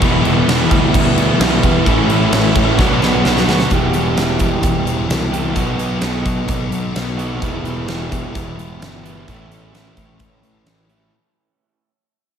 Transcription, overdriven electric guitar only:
0.01 E2 B2 E3 G3 B3 E4
0.25 E3 G3 B3 E4
0.48 E2 B2 E3 G3 B3 E4
1.18 E3 G3 B3 E4
1.41 E3 G3 B3 E4
1.64 E3 G3 B3 E4
1.87 A2 E3 A3 C#4 E4
2.10 A3 C#4 E4
2.33 A2 E3 A3 C#4 E4
2.78 B2 F#3 B3 D4 F#4
3.01 B3 D4 F#4
3.23 F#3 B3 D4 F#4
3.47 B3 D4 F#4
3.71 E2 B2 E3 G3 E4 G4
5.32 E2 B2 E3 G3 E4 G4
5.54 B2 F#3 B3 D#4 F#4
7.17 B2 F#3 B3 D#4 F#4
7.41 E2 B2 E3 G3 B3 E4
9.03 E2 B2 E3 G3 B3 E4
9.27 A2 E3 A3 C#4 E4
10.89 A2 E3 A3 C#4 E4

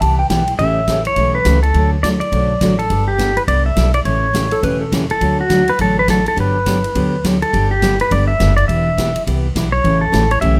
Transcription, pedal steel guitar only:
0.59 E5
1.07 C#5
1.35 B4
1.63 A4
2.03 D5
2.20 D5
2.79 A4
3.08 G4
3.37 B4
3.48 D5
3.66 E5
3.94 D5
4.06 C#5
5.11 A4
5.41 F#4
5.70 B4
5.81 A4
5.99 B4
6.10 A4
6.28 A4
6.40 B4
7.42 A4
7.71 G4
8.01 B4
8.12 D5
8.28 E5
8.57 D5
8.68 E5
9.72 C#5
10.01 A4
10.31 C#5
10.41 E5

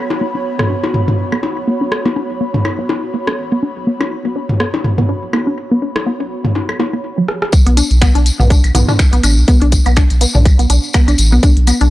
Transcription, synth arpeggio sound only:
0.21 B3
0.35 D4
0.59 B3
0.70 D4
0.94 B3
1.08 D4
1.32 B3
1.43 D4
1.67 B3
1.81 D4
2.06 B3
2.16 D4
2.41 B3
2.54 D4
2.79 B3
2.89 D4
3.14 B3
3.28 D4
3.52 B3
3.63 D4
3.87 B3
4.01 D4
4.25 B3
4.36 D4
4.60 B3
4.74 D4
4.98 B3
5.09 D4
5.33 B3
5.47 D4
5.71 B3
5.82 D4
6.07 B3
6.20 D4
6.45 B3
6.55 D4
6.80 B3
6.93 B3
7.18 F#3
7.28 B4
7.67 B3
7.77 D4
8.02 B3
8.15 D4
8.40 B3
8.50 D4
8.75 B3
8.89 D4
9.13 B3
9.24 D4
9.48 B3
9.62 D4
9.86 B3
9.97 D4
10.21 B3
10.35 D4
10.59 B3
10.70 D4
10.94 B3
11.08 D4
11.32 B3
11.43 D4
11.67 B3
11.81 D4

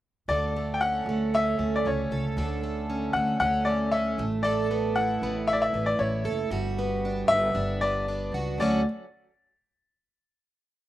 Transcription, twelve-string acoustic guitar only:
0.30 D3 A4
0.56 A3
0.82 C#4
1.09 A3
1.34 C#4
1.59 A3
1.86 C#4
2.12 A4
2.38 D3 A4
2.64 A3
2.90 C#4
3.16 A3
3.42 C#4
3.67 A3
3.92 C#4
4.19 A3
4.44 A3 A4
4.71 B3
4.97 E4
5.23 B3
5.50 E4
5.74 B3
5.99 E4
6.25 A4
6.51 G3 F#4
6.79 B3
7.05 D4
7.31 B3
7.55 D4
7.83 B3
8.08 D4
8.34 F#4
8.60 D3 F#3 A3 C#4 F#4

